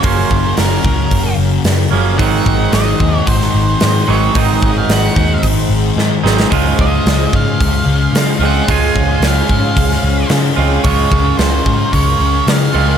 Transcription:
Already playing: analog synth pad C#4 F#4 A#4
0.02 picked electric bass F#1, clean electric guitar F#2 C#3 A#3 C#4, lead electric guitar C5, kick, open hi-hat
0.07 distorted electric guitar F#3
0.31 picked electric bass F#1, kick
0.57 picked electric bass F#1, lead electric guitar A#4, snare, open hi-hat
0.84 picked electric bass C#2, kick
1.11 picked electric bass F#1, kick, open hi-hat
1.37 picked electric bass F#1
1.64 picked electric bass F#2, snare, open hi-hat
1.91 picked electric bass F#1, clean electric guitar F#2 C#3 F3 A#3 C#4, distorted electric guitar F#3
2.18 picked electric bass G#1, clean electric guitar G#2 D#3 F#3 C4 D#4, analog synth pad D#4 G#4 C5 F#5, lead electric guitar F#5, kick, open hi-hat
2.22 distorted electric guitar G#3
2.46 picked electric bass G#1, kick
2.72 picked electric bass G#1, lead electric guitar D#5, snare, open hi-hat
3.00 picked electric bass D#2, kick
3.18 lead electric guitar C#5
3.27 picked electric bass G#1, lead electric guitar C5, kick, open hi-hat
3.41 snare
3.54 picked electric bass G#1
3.80 picked electric bass G#2, snare, open hi-hat
4.07 picked electric bass G#1, clean electric guitar G#2 D#3 F#3 C4 D#4, distorted electric guitar G#3, lead electric guitar C#5
4.34 picked electric bass G#1, clean electric guitar G#2 D#3 F#3 C4 D#4, distorted electric guitar G#3, lead electric guitar D#5, kick, open hi-hat
4.63 picked electric bass G#1, kick
4.78 lead electric guitar F5
4.88 picked electric bass G#1, lead electric guitar F#5, snare, open hi-hat
5.16 picked electric bass D#2, kick
5.43 picked electric bass G#1, kick, open hi-hat
5.69 picked electric bass G#1
5.97 picked electric bass G#2, snare
6.24 picked electric bass G#1, clean electric guitar G#2 D#3 F#3 C4 D#4, distorted electric guitar G#3, snare
6.40 snare
6.50 picked electric bass C#2, clean electric guitar C#3 G#3 F4, analog synth pad C#4 F5, distorted electric guitar C#4, kick, open hi-hat
6.79 picked electric bass C#2, lead electric guitar D#5, kick
7.06 picked electric bass C#2, snare, open hi-hat
7.33 picked electric bass G#2, lead electric guitar F5, kick
7.61 picked electric bass C#2, kick, open hi-hat
7.86 picked electric bass C#2
8.13 picked electric bass C#3, snare, open hi-hat
8.39 picked electric bass C#2, clean electric guitar G#3 C4 F4, distorted electric guitar C#4
8.44 clean electric guitar C#3, lead electric guitar F#5
8.68 picked electric bass C#2, clean electric guitar C#3 G#3 F4, distorted electric guitar C#4, lead electric guitar G#5, kick, open hi-hat
8.95 picked electric bass C#2, kick
9.20 picked electric bass C#2, snare, open hi-hat
9.27 lead electric guitar F5
9.49 picked electric bass G#2, kick
9.76 picked electric bass C#2, kick, open hi-hat
9.91 snare
10.03 picked electric bass C#2
10.29 picked electric bass C#3, snare, open hi-hat
10.56 picked electric bass C#2, clean electric guitar C#3 G#3 C4 F4, distorted electric guitar C#4
10.83 picked electric bass C#2, clean electric guitar C#3 G#3 F4, analog synth pad A#4, lead electric guitar C#5, kick, open hi-hat
10.87 distorted electric guitar C#4
11.11 picked electric bass C#2, kick
11.38 picked electric bass C#2, lead electric guitar C5, snare, open hi-hat
11.66 picked electric bass G#2, kick
11.93 picked electric bass C#2, lead electric guitar C#5, kick, open hi-hat
12.20 picked electric bass C#2
12.47 picked electric bass C#3, lead electric guitar F5, snare, open hi-hat
12.73 picked electric bass C#2, clean electric guitar C#3 G#3 C4 F4, distorted electric guitar C#4

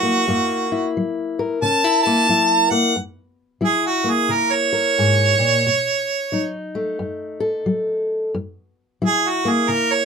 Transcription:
Already playing: steel-string acoustic guitar F#3 E4 A#4, harmonica F#4
0.03 steel-string acoustic guitar A#3
0.28 steel-string acoustic guitar F#2 A#3 E4
0.72 steel-string acoustic guitar E4
0.97 steel-string acoustic guitar F#3
1.39 steel-string acoustic guitar A#4
1.62 steel-string acoustic guitar C#3 C#4, harmonica A5
1.84 steel-string acoustic guitar E4
2.03 steel-string acoustic guitar A#3, harmonica A5
2.29 steel-string acoustic guitar F#3 E4
2.70 steel-string acoustic guitar A#3, harmonica F#5
2.96 steel-string acoustic guitar F#2
3.61 steel-string acoustic guitar F#3 E4, harmonica G#4
3.86 harmonica F#4
4.04 steel-string acoustic guitar A#3
4.10 harmonica G#4
4.29 steel-string acoustic guitar C#3, harmonica A#4
4.52 harmonica C#5
4.73 steel-string acoustic guitar A#4
4.98 steel-string acoustic guitar G#2
5.39 steel-string acoustic guitar A#2
5.66 steel-string acoustic guitar B2
6.32 steel-string acoustic guitar F#3 D#4
6.75 steel-string acoustic guitar A3
6.99 steel-string acoustic guitar F#2
7.40 steel-string acoustic guitar A4
7.66 steel-string acoustic guitar F#3
8.34 steel-string acoustic guitar F#2
9.02 steel-string acoustic guitar F#3 E4
9.06 harmonica G#4
9.28 harmonica F#4
9.45 steel-string acoustic guitar A#3
9.49 harmonica G#4
9.68 steel-string acoustic guitar C#3, harmonica A#4
9.92 harmonica C#5

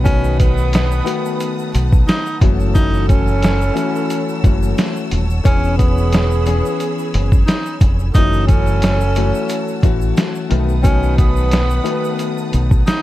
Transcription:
Already playing: fingered electric bass B1, saxophone section F#3 D#4 B4, string section B4 F#5 A5 D#6
0.04 grand piano D#3 A3 B3 F#4, tenor saxophone C#4, kick, closed hi-hat, shaker
0.24 shaker
0.40 tenor saxophone B3, kick, closed hi-hat, shaker
0.58 shaker
0.73 snare, closed hi-hat, shaker
0.92 shaker
1.05 grand piano D#3 A3 B3 F#4, closed hi-hat, shaker
1.26 shaker
1.40 closed hi-hat, shaker
1.59 shaker
1.75 fingered electric bass B1, closed hi-hat, shaker
1.92 kick, shaker
2.08 tenor saxophone D#4, snare, closed hi-hat, shaker
2.26 shaker
2.41 fingered electric bass F#1, grand piano E3 A3 C#4 F#4, saxophone section E3 F#3 A4, string section C#5 E6, kick, closed hi-hat
2.60 shaker
2.74 grand piano E3 A3 C#4 F#4, tenor saxophone D#4, kick, closed hi-hat, shaker
2.94 shaker
3.08 tenor saxophone C#4, kick, closed hi-hat, shaker
3.28 shaker
3.42 snare, closed hi-hat, shaker
3.61 shaker
3.74 grand piano E3 A3 C#4 F#4, closed hi-hat, shaker
3.96 shaker
4.10 closed hi-hat, shaker
4.29 shaker
4.44 fingered electric bass F#1, grand piano E3 A3 C#4 F#4, kick, closed hi-hat, shaker
4.63 shaker
4.78 snare, closed hi-hat, shaker
4.96 shaker
5.11 fingered electric bass D#1, closed hi-hat
5.30 shaker
5.44 fingered electric bass E1, grand piano E3 B3 C#4 G#4, saxophone section E3 C#4 G#4, tenor saxophone C#4, string section G#5 B5, kick, closed hi-hat, shaker
5.64 shaker
5.78 tenor saxophone B3, kick, closed hi-hat, shaker
5.98 shaker
6.13 snare, closed hi-hat, shaker
6.31 shaker
6.46 grand piano E3 B3 C#4 G#4, closed hi-hat, shaker
6.66 shaker
6.80 closed hi-hat, shaker
6.99 shaker
7.14 fingered electric bass F#1, closed hi-hat
7.32 kick, shaker
7.46 tenor saxophone D#4, snare, closed hi-hat, shaker
7.66 shaker
7.81 fingered electric bass F1, kick, closed hi-hat, shaker
7.99 shaker
8.12 fingered electric bass F#1, saxophone section E3 F#3 A4, tenor saxophone D#4, string section C#5 F#5 A5 E6, kick, closed hi-hat, shaker
8.17 grand piano E3 A3 C#4 F#4
8.33 shaker
8.47 tenor saxophone C#4, kick, closed hi-hat, shaker
8.67 shaker
8.82 snare, closed hi-hat, shaker
9.01 shaker
9.15 grand piano E3 A3 C#4 F#4, closed hi-hat, shaker
9.35 shaker
9.49 closed hi-hat, shaker
9.68 shaker
9.83 fingered electric bass A1, grand piano E3 A3 C#4 F#4, kick, closed hi-hat, shaker
10.02 shaker
10.17 snare, closed hi-hat, shaker
10.35 shaker
10.50 fingered electric bass B1, grand piano D#3 A3 B3 F#4, saxophone section F#3 D#4 B4, string section B4 D#6, closed hi-hat
10.69 shaker
10.82 grand piano D#3 A3 B3 F#4, tenor saxophone C#4, kick, closed hi-hat, shaker
11.03 shaker
11.18 tenor saxophone B3, kick, closed hi-hat, shaker
11.36 shaker
11.51 snare, closed hi-hat, shaker
11.71 shaker
11.84 grand piano D#3 A3 B3 F#4, closed hi-hat, shaker
12.05 shaker
12.19 closed hi-hat, shaker
12.38 shaker
12.53 fingered electric bass B1, closed hi-hat, shaker
12.71 kick, shaker
12.86 tenor saxophone D#4, snare, closed hi-hat, shaker

